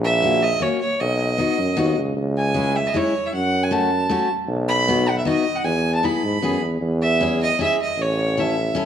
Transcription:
Already playing: A#1
0.05 E5
0.22 A#3 C#4 F#4
0.43 D#5
0.60 A#3 C#4 F#4 C#5
0.81 C#5
1.01 B1 D#5
1.38 B3 D#4 F#4
1.58 F#2
1.77 D#2 B3 D#4 F#4
1.98 C#2
2.16 C#2
2.38 G#5
2.54 G#3 C#4 E4
2.76 E5
2.87 D#5
2.94 G#3 C#4 E4 C#5
3.26 E5
3.33 F#2 F#5
3.63 G#5
3.71 A3 C#4 F#4 A5
4.09 A3 C#4 F#4
4.48 B1
4.69 B5
4.88 B3 D#4 F#4
5.09 F#5
5.18 E5
5.25 B3 D#4 F#4 D#5
5.56 F#5
5.64 E2 G#5
5.95 A5
6.03 B3 E4 G#4 B5
6.23 G#2
6.42 F#2 B3 E4 G#4
6.61 E2
6.81 E2
7.02 E5
7.21 C#4 E4 G#4
7.42 D#5
7.59 C#4 E4 G#4 E5
7.82 D#5
7.98 A1
8.02 C#5
8.37 C#4 E4 A4 E5
8.75 C#4 E4 A4

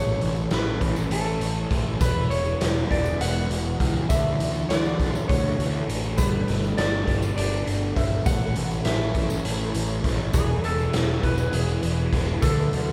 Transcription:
Already playing: A1 A2 A3 C#4 E4 A4 C#5
0.21 A1 E3, closed hi-hat
0.36 tambourine
0.51 A1 E3 B4, snare, closed hi-hat
0.81 A1 C#4, kick, closed hi-hat
0.96 tambourine
1.10 A1 A3 A4, closed hi-hat
1.40 A1 E3, closed hi-hat
1.70 A1 A3, kick, closed hi-hat
2.00 E1 E3 G#3 B3 G#4 B4, kick, closed hi-hat, tambourine
2.30 E1 G#3 C#5, closed hi-hat
2.45 tambourine
2.60 E1 E3, snare, closed hi-hat
2.91 E1 B3 D5, kick, closed hi-hat
3.05 tambourine
3.20 E1 G#3 F#5, closed hi-hat
3.49 E1 E3, closed hi-hat
3.80 C#2 G#3, kick, closed hi-hat
4.09 D2 D3 A3 D4 F#4 A4 E5, kick, closed hi-hat, tambourine
4.39 D2 E3, closed hi-hat, tambourine
4.55 tambourine
4.69 D2 E3 D5, snare, closed hi-hat, tambourine
4.85 tambourine
4.99 D2 D4, kick, snare, closed hi-hat
5.13 C#5, tambourine
5.28 D2 A3 C#5, kick, closed hi-hat
5.58 D2 E3, closed hi-hat
5.88 A1 A3, closed hi-hat
6.04 tambourine
6.17 G1 G3 B3 G4 B4, kick, closed hi-hat, tambourine
6.47 G1 A3, snare, closed hi-hat
6.64 tambourine
6.77 G1 A3 D5, snare, closed hi-hat
7.07 G1 G4, kick, closed hi-hat
7.22 tambourine
7.37 G1 D4 D5, closed hi-hat
7.67 G1 A3, closed hi-hat
7.96 G1 D4 E5, kick, closed hi-hat
8.25 A1 A2 C#4 E4 A4 C#5 F#5, kick, closed hi-hat, tambourine
8.55 A1 E3, closed hi-hat
8.71 tambourine
8.85 A1 E3 E5, snare, closed hi-hat
9.14 A1 C#4, kick, closed hi-hat
9.30 tambourine
9.45 A1 A3, closed hi-hat
9.74 A1 E3, closed hi-hat
10.04 A1 A3, kick, snare, closed hi-hat
10.33 E1 E3 B3 G#4 B4 G#5, kick, closed hi-hat, tambourine
10.64 E1 G#3 A4, closed hi-hat
10.79 tambourine
10.93 E1 E3, snare, closed hi-hat
11.23 E1 B3 B4, kick, closed hi-hat
11.38 B4, tambourine
11.53 E1 G#3 G#4, closed hi-hat
11.83 E1 E3, closed hi-hat
12.12 E1 G#3, kick, snare, closed hi-hat
12.42 D2 D3 A3 D4 F#4 A4, kick, closed hi-hat, tambourine
12.73 D2 F#3, closed hi-hat

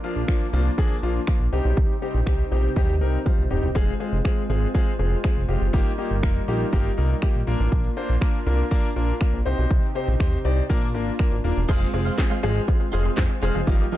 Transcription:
Already playing: A#3 D4 F4
0.03 F3 A#3 D4 F4
0.16 A#1
0.28 F3 A#3 D4 F4, finger snap, kick
0.53 C2 F3 A#3 D4 F4
0.78 F3 A#3 D4 G#4, kick
1.03 A#1 F3 A#3 D4 F4
1.27 F3 A#3 D4 F4, finger snap, kick
1.40 A#1
1.52 C2 C3 G3 C4 D#4 G4
1.65 B1
1.77 C2, kick
2.02 G3 C4 D#4 G4
2.14 A#1
2.27 C2 G3 C4 D#4 G4, finger snap, kick
2.52 A#1 G3 C4 D#4 G4
2.76 D#2 G3 C4 D#4 G4, kick
3.01 C2 G3 C4 D#4 A#4
3.25 G3 C4 D#4 F4, kick, high tom
3.38 C2, mid tom
3.50 D#1 G3 C4 D#4 G4, mid tom
3.63 E1, floor tom
3.75 F1 G#3 C4 F4 G#4, kick
4.00 G#3 C4 F4 G#4
4.13 F1
4.25 G#3 C4 F4 G#4, finger snap, kick
4.49 G#1 G#3 C4 F4 G#4
4.74 G#3 C4 F4 G#4, kick
4.99 F1 G#3 C4 F4 G#4
5.24 G#3 C4 F4 G#4, finger snap, kick
5.37 F1
5.48 F1 G#3 C4 F4 G4
5.62 F#1
5.73 G1 G3 A#3 D#4 F4 G4 A#4, kick, closed hi-hat
5.86 closed hi-hat
5.98 A#3 D#4 F4 G4
6.11 G1, closed hi-hat
6.23 F1 A#3 D#4 F4 A#4, finger snap, kick, closed hi-hat
6.36 closed hi-hat
6.48 A#1 A#3 D#4 F4 G4
6.61 closed hi-hat
6.73 G1 A#3 D#4 F4 G4, kick, closed hi-hat
6.85 closed hi-hat
6.97 C2 A#3 D#4 F4 A#4
7.10 closed hi-hat
7.22 A#3 D#4 F4 G4, finger snap, kick, closed hi-hat
7.35 A#1, closed hi-hat
7.47 A#1 A#3 D4 F4 A#4
7.60 A1, closed hi-hat
7.72 A#1, kick, closed hi-hat
7.85 closed hi-hat
7.97 A#3 D4 F4 C5
8.09 A#1, closed hi-hat
8.21 A#3 D4 F4 A#4, finger snap, kick, closed hi-hat
8.34 closed hi-hat
8.46 C2 A#3 D4 F4 A#4
8.59 closed hi-hat
8.71 A#3 D4 F4 A#4, kick, closed hi-hat
8.84 closed hi-hat
8.96 A#1 A#3 D4 F4 A#4
9.08 closed hi-hat
9.21 A#3 D4 F4 A#4, finger snap, kick, closed hi-hat
9.33 A#1, closed hi-hat
9.45 C2 C3 C4 D#4 G4 C5
9.58 B1, closed hi-hat
9.71 C2, kick, closed hi-hat
9.83 closed hi-hat
9.95 C4 D#4 G4 C5
10.08 A#1, closed hi-hat
10.20 D#2 C4 D#4 G4 C5, finger snap, kick, closed hi-hat
10.33 closed hi-hat
10.45 C2 C4 D#4 G4 D5
10.58 closed hi-hat
10.69 A#1 A#3 D4 F4 A#4, kick, closed hi-hat
10.82 closed hi-hat
10.94 G#1 A#3 D4 F4 A#4
11.07 closed hi-hat
11.19 A#3 D4 F4 A#4, finger snap, kick, closed hi-hat
11.32 G#1, closed hi-hat
11.44 D#1 A#3 D4 F4 A#4
11.57 E1, closed hi-hat
11.68 F1 F3 G#3 C4 F4 G#4 C5 F5, kick, closed hi-hat, crash
11.82 closed hi-hat
11.93 F1 F3 G#3 C4 F4 G#4, muted clean electric guitar stroke
12.05 F4 G#4 C5 F5, closed hi-hat
12.18 G#3 C4 F4 G#4, kick, snare, clap, closed hi-hat
12.30 G#3 F4 G#4 C5 F5, closed hi-hat
12.43 G#1 F3 G#3 C4 F4 G#4, muted clean electric guitar stroke
12.55 muted clean electric guitar stroke, closed hi-hat
12.67 G#3 C4 F4 G#4, muted clean electric guitar stroke, kick, closed hi-hat
12.80 muted clean electric guitar stroke, closed hi-hat
12.92 F1 G#3 C4 F4 G#4 C5 F5
13.05 G#3, muted clean electric guitar stroke, closed hi-hat
13.17 F2 G#3 C4 F4 G#4, kick, snare, clap, closed hi-hat
13.30 muted clean electric guitar stroke, closed hi-hat
13.42 F1 G#3 C4 F4 G#4 C5 F5
13.55 F#1 F3, muted clean electric guitar stroke, closed hi-hat
13.67 G1 F3 G3 A#3 D#4 F4 G4 A#4 D#5, kick, closed hi-hat
13.80 closed hi-hat
13.92 F3 G3 A#3 D#4 F4 G4 D#5

